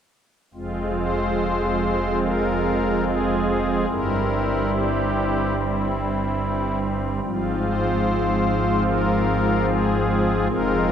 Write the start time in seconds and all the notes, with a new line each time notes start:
0.54 F1 F2 G#3 C4 F4
0.97 C5
2.24 A#4
3.07 G#4
3.90 G1 G2 G3 C4 E4 A#4
4.73 G4
5.57 E4
7.24 G#1 G#2 F3 C4 F4
7.64 C5
8.87 A#4
9.68 G#4
10.50 F1 F2 G#3 C4 F4 A#4